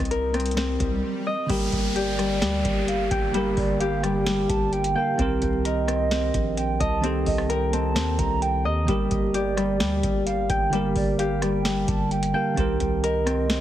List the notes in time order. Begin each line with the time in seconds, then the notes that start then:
Already playing: C4 A#4 D#5, swell
0.00 C2, kick
0.05 closed hi-hat
0.11 A#4, closed hi-hat
0.34 C4, cross-stick, closed hi-hat
0.40 closed hi-hat
0.46 closed hi-hat
0.51 closed hi-hat
0.57 C4, snare, closed hi-hat
0.80 C2, kick, closed hi-hat
1.27 D#5
1.46 G1 D3 G3 A#3 G4, kick, closed hi-hat, crash, downlifter
1.52 A#4
1.72 G1, kick, closed hi-hat
1.96 G4 D5, closed hi-hat
2.18 G3, cross-stick, closed hi-hat
2.41 D2 G3, snare, closed hi-hat
2.65 G1, kick, closed hi-hat
2.88 F5, closed hi-hat
3.11 G1 G5, kick, closed hi-hat
3.31 D3 G3 A#3 G4, closed hi-hat
3.37 A#4
3.57 G1 D5, kick, open hi-hat
3.80 G4 F5, closed hi-hat
4.03 G3 G5, cross-stick, closed hi-hat
4.26 G3, snare, closed hi-hat
4.49 G1 A5, kick, closed hi-hat
4.73 G5, closed hi-hat
4.84 closed hi-hat
4.95 D3 A#3 G4 A#4 F5 G5
5.16 C2 D#3 C4 G4, kick, closed hi-hat
5.22 A#4
5.42 C2, kick, closed hi-hat
5.65 A#4 D#5, closed hi-hat
5.87 C4, cross-stick, closed hi-hat
6.11 C4, snare, closed hi-hat
6.34 A#1, kick, closed hi-hat
6.57 G5, closed hi-hat
6.80 C2 D#5 A5, kick, closed hi-hat
7.01 D#3 C4 G4, closed hi-hat
7.06 A4
7.26 C2 D#5, kick, open hi-hat
7.38 cross-stick
7.49 A#4 G5, closed hi-hat
7.73 C4 A5, closed hi-hat
7.95 D#2 C4, snare, closed hi-hat
8.19 C2 A#5, kick, closed hi-hat
8.42 G5, closed hi-hat
8.65 D#2 D#5
8.85 G1 D3 G3 A#3 G4, kick, closed hi-hat
8.91 A#4
9.11 G1, kick, closed hi-hat
9.34 G4 D5, closed hi-hat
9.57 G3, cross-stick, closed hi-hat
9.80 D2 G3, snare, closed hi-hat
10.03 G1, kick, closed hi-hat
10.26 F5, closed hi-hat
10.49 G1 G5, kick, closed hi-hat
10.70 D3 G3 A#3 G4, closed hi-hat
10.76 A#4
10.96 G1 D5, kick, open hi-hat
11.19 G4 F5, closed hi-hat
11.42 G3 G5, cross-stick, closed hi-hat
11.65 G3, snare, closed hi-hat
11.88 G1 A5, kick, closed hi-hat
12.11 G5, closed hi-hat
12.23 closed hi-hat
12.33 D3 A#3 G4 A#4 F5 G5
12.54 C2 D#3 C4 G4, kick, closed hi-hat
12.60 A#4
12.80 C2, kick, closed hi-hat
13.03 A#4 D#5, closed hi-hat
13.26 C4, cross-stick, closed hi-hat
13.50 C4, snare, closed hi-hat